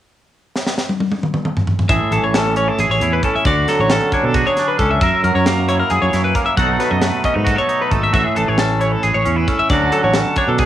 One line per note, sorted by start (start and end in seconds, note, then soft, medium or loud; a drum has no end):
0.56 snare medium
0.66 snare medium
0.78 snare medium
0.89 high tom medium
1.00 high tom medium
1.12 high tom medium
1.23 mid tom medium
1.34 mid tom medium
1.45 mid tom medium
1.57 floor tom medium
1.67 floor tom medium
1.79 floor tom medium
1.89 1.99 A1 medium
1.89 3.43 A2 medium
1.89 2.79 G#4 medium
1.89 2.12 E5 medium
1.89 kick loud
1.89 closed hi-hat medium
2.11 2.21 A1 medium
2.11 3.46 E3 medium
2.11 2.23 A4 medium
2.11 closed hi-hat medium
2.22 2.69 A1 medium
2.22 2.34 C#5 medium
2.34 2.56 C#4 medium
2.34 2.57 A4 medium
2.34 snare loud
2.34 closed hi-hat medium
2.56 2.68 C#4 medium
2.56 2.68 C#5 medium
2.56 closed hi-hat medium
2.68 3.01 E4 soft
2.68 2.80 A4 medium
2.79 2.88 A1 medium
2.79 2.90 G#4 medium
2.79 3.44 G#4 medium
2.79 closed hi-hat medium
2.89 2.99 A1 medium
2.89 3.13 C#5 medium
3.00 3.19 E2 medium
3.00 3.44 E4 medium
3.00 closed hi-hat medium
3.13 3.24 B4 medium
3.23 3.49 C#4 medium
3.23 3.35 A4 medium
3.23 kick medium
3.23 closed hi-hat medium
3.36 3.46 E5 medium
3.45 3.64 D2 medium
3.45 4.99 D3 medium
3.45 4.34 F#4 soft
3.45 3.68 D5 medium
3.45 kick medium
3.45 closed hi-hat medium
3.68 5.24 F#3 medium
3.68 3.80 A4 medium
3.68 snare soft
3.68 closed hi-hat medium
3.79 3.98 A1 medium
3.79 3.91 C#5 medium
3.90 4.80 C#4 medium
3.90 4.13 A4 medium
3.90 snare loud
3.90 closed hi-hat medium
4.12 4.58 D4 medium
4.12 4.25 C#5 medium
4.12 kick medium
4.12 closed hi-hat soft
4.23 4.42 B2 medium
4.23 4.35 A4 medium
4.34 4.46 F#4 medium
4.34 4.46 G#4 medium
4.34 kick medium
4.34 closed hi-hat medium
4.46 5.02 G#4 soft
4.46 4.69 C#5 medium
4.57 5.00 D4 soft
4.57 snare soft
4.57 closed hi-hat medium
4.68 4.79 B4 medium
4.79 4.98 C#2 medium
4.79 5.00 C#4 medium
4.79 4.90 A4 medium
4.79 kick medium
4.79 closed hi-hat soft
4.91 5.00 E5 medium
5.01 5.11 F#2 medium
5.01 6.58 F#2 medium
5.01 5.91 A#4 medium
5.01 5.24 E5 medium
5.01 kick loud
5.01 closed hi-hat medium
5.23 5.33 F#2 medium
5.23 6.56 F#3 medium
5.23 5.35 A#4 medium
5.23 closed hi-hat soft
5.35 5.82 F#2 medium
5.35 5.47 C#5 medium
5.46 6.34 A#3 medium
5.46 5.68 A#4 medium
5.46 snare loud
5.46 closed hi-hat medium
5.68 6.12 E4 medium
5.68 5.79 C#5 medium
5.68 closed hi-hat medium
5.80 5.91 A#4 medium
5.90 6.00 F#2 medium
5.90 6.02 G#4 medium
5.90 6.56 G#4 medium
5.90 closed hi-hat medium
6.02 6.12 F#2 medium
6.02 6.24 C#5 medium
6.13 6.32 F#2 medium
6.13 6.55 E4 medium
6.13 snare soft
6.13 closed hi-hat medium
6.24 6.35 B4 medium
6.35 6.55 A#3 medium
6.35 6.45 A#4 medium
6.35 kick medium
6.35 closed hi-hat medium
6.46 6.57 E5 medium
6.57 6.76 B1 medium
6.57 8.14 B2 medium
6.57 6.77 F#3 medium
6.57 7.02 A3 medium
6.57 7.24 D#4 medium
6.57 7.44 A4 medium
6.57 6.80 F#5 medium
6.57 kick medium
6.57 closed hi-hat medium
6.79 8.11 F#3 medium
6.79 6.91 B4 medium
6.79 snare soft
6.79 closed hi-hat medium
6.91 7.10 F#2 medium
6.91 7.02 D#5 medium
7.02 7.90 A3 soft
7.02 7.25 B4 medium
7.02 snare loud
7.02 closed hi-hat medium
7.24 7.34 C#4 medium
7.24 7.36 D#5 medium
7.24 kick medium
7.24 closed hi-hat medium
7.34 7.55 G#2 medium
7.34 7.67 D#4 soft
7.34 7.48 B4 medium
7.45 7.56 F#4 medium
7.45 7.59 A4 medium
7.45 kick medium
7.45 closed hi-hat medium
7.56 8.12 A4 soft
7.56 7.81 C#5 medium
7.69 8.11 D#4 medium
7.69 closed hi-hat medium
7.81 7.92 B4 medium
7.91 8.10 G#1 medium
7.91 8.57 A3 medium
7.91 8.03 A4 medium
7.91 kick medium
7.91 closed hi-hat medium
8.03 8.13 E5 medium
8.13 8.23 A1 medium
8.13 9.67 A2 medium
8.13 8.24 F#4 medium
8.13 8.37 E5 medium
8.13 kick medium
8.13 closed hi-hat medium
8.24 9.02 G#4 medium
8.35 8.46 A1 medium
8.35 9.70 E3 medium
8.35 8.48 A4 medium
8.35 closed hi-hat medium
8.48 8.95 A1 medium
8.48 8.59 C#5 medium
8.58 9.25 C#4 medium
8.58 8.81 A4 medium
8.58 snare loud
8.58 closed hi-hat medium
8.80 9.25 E4 medium
8.80 8.92 C#5 medium
8.80 closed hi-hat medium
8.92 9.03 A4 medium
9.03 9.13 A1 medium
9.03 9.68 G#4 medium
9.03 9.14 G#4 medium
9.03 closed hi-hat medium
9.14 9.24 A1 medium
9.14 9.37 C#5 medium
9.25 9.44 E2 medium
9.25 9.36 C#4 medium
9.25 closed hi-hat medium
9.36 9.70 E4 soft
9.36 9.48 B4 medium
9.48 9.71 C#4 medium
9.48 9.59 A4 medium
9.48 kick medium
9.48 closed hi-hat medium
9.59 9.70 E5 medium
9.69 9.89 D2 medium
9.69 10.66 D3 medium
9.69 9.92 F#3 medium
9.69 10.16 C#4 soft
9.69 10.37 D4 soft
9.69 10.60 F#4 medium
9.69 9.93 D5 medium
9.69 kick medium
9.69 closed hi-hat medium
9.92 10.66 F#3 medium
9.92 10.03 A4 medium
9.92 closed hi-hat medium
10.04 10.22 A1 medium
10.04 10.15 C#5 medium
10.14 10.66 C#4 medium
10.14 10.37 A4 medium
10.14 snare medium
10.14 closed hi-hat medium
10.36 10.66 D4 medium
10.36 10.49 C#5 medium
10.36 kick medium
10.36 closed hi-hat medium
10.48 10.66 B2 medium
10.48 10.59 A4 medium
10.58 10.66 G#4 medium
10.58 kick medium
10.58 closed hi-hat medium